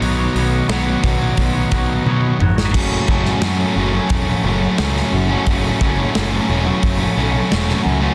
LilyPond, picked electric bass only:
\new Staff \with { instrumentName = "Picked electric bass" } { \clef bass \time 4/4 \key fis \dorian \tempo 4 = 88 b,,8 b,,8 b,,8 b,,8 b,,8 b,,8 b,8 gis,,8 | fis,,8 fis,,8 fis,8 fis,,8 e,,8 fis,,8 cis,8 fis,,8 | fis,,8 fis,,8 fis,,8 e,,8 fis,,8 b,,8 e,,8 cis,8 | }